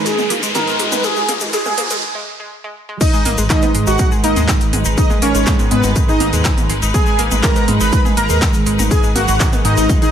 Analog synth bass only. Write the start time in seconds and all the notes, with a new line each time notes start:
0.30 G#1
0.43 D#2
0.79 G#1
0.92 G#1
1.29 G#1
1.41 G#1
1.78 G#2
1.91 G#1
3.26 G#1
3.38 G#1
3.75 G#2
3.87 G#1
4.24 G#1
4.36 D#2
4.73 G#1
4.86 G#1
5.22 G#1
5.35 G#1
5.71 G#2
5.84 G#1
6.21 G#1
6.33 D#2
6.70 G#1
6.82 G#1
7.19 G#1
7.32 G#1
7.68 G#2
7.81 G#1
8.17 G#1
8.30 D#2
8.66 G#1
8.79 G#1
9.16 G#1
9.28 G#1
9.65 G#2
9.77 G#1